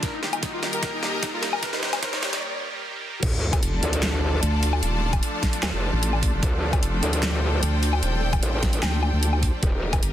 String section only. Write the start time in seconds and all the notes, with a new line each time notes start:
Already playing: F4
0.03 G4
0.17 A#4
0.28 D#5
0.45 A#5
3.23 F4
3.36 A4
3.57 D5
3.63 A5
6.91 G5
9.63 G4
9.70 A#4
9.76 D#5
10.05 A#5